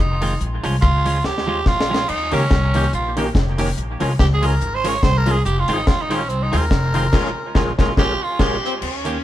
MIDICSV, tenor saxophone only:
0, 0, Header, 1, 2, 480
1, 0, Start_track
1, 0, Tempo, 420463
1, 467, Time_signature, 4, 2, 24, 8
1, 10545, End_track
2, 0, Start_track
2, 0, Title_t, "Tenor saxophone"
2, 0, Program_c, 0, 66
2, 0, Note_on_c, 0, 63, 81
2, 472, Note_off_c, 0, 63, 0
2, 931, Note_on_c, 0, 65, 108
2, 1427, Note_on_c, 0, 67, 108
2, 1444, Note_off_c, 0, 65, 0
2, 1911, Note_on_c, 0, 65, 113
2, 1928, Note_off_c, 0, 67, 0
2, 2387, Note_on_c, 0, 63, 106
2, 2405, Note_off_c, 0, 65, 0
2, 2663, Note_on_c, 0, 61, 108
2, 2680, Note_off_c, 0, 63, 0
2, 3351, Note_off_c, 0, 61, 0
2, 3360, Note_on_c, 0, 65, 88
2, 3604, Note_off_c, 0, 65, 0
2, 4795, Note_on_c, 0, 67, 104
2, 4865, Note_off_c, 0, 67, 0
2, 4951, Note_on_c, 0, 68, 104
2, 5096, Note_on_c, 0, 70, 98
2, 5113, Note_off_c, 0, 68, 0
2, 5418, Note_on_c, 0, 72, 116
2, 5436, Note_off_c, 0, 70, 0
2, 5575, Note_on_c, 0, 73, 100
2, 5592, Note_off_c, 0, 72, 0
2, 5744, Note_on_c, 0, 72, 117
2, 5761, Note_off_c, 0, 73, 0
2, 5907, Note_on_c, 0, 70, 106
2, 5924, Note_off_c, 0, 72, 0
2, 6066, Note_on_c, 0, 68, 95
2, 6083, Note_off_c, 0, 70, 0
2, 6220, Note_off_c, 0, 68, 0
2, 6227, Note_on_c, 0, 67, 109
2, 6386, Note_on_c, 0, 65, 98
2, 6403, Note_off_c, 0, 67, 0
2, 6549, Note_on_c, 0, 63, 99
2, 6566, Note_off_c, 0, 65, 0
2, 6708, Note_on_c, 0, 65, 99
2, 6726, Note_off_c, 0, 63, 0
2, 6866, Note_on_c, 0, 63, 94
2, 6883, Note_off_c, 0, 65, 0
2, 7024, Note_on_c, 0, 61, 87
2, 7041, Note_off_c, 0, 63, 0
2, 7177, Note_on_c, 0, 60, 94
2, 7194, Note_off_c, 0, 61, 0
2, 7338, Note_on_c, 0, 63, 93
2, 7356, Note_off_c, 0, 60, 0
2, 7499, Note_on_c, 0, 70, 99
2, 7516, Note_off_c, 0, 63, 0
2, 8713, Note_off_c, 0, 70, 0
2, 9117, Note_on_c, 0, 67, 94
2, 9391, Note_on_c, 0, 65, 84
2, 9408, Note_off_c, 0, 67, 0
2, 9599, Note_on_c, 0, 67, 91
2, 9616, Note_off_c, 0, 65, 0
2, 10073, Note_off_c, 0, 67, 0
2, 10545, End_track
0, 0, End_of_file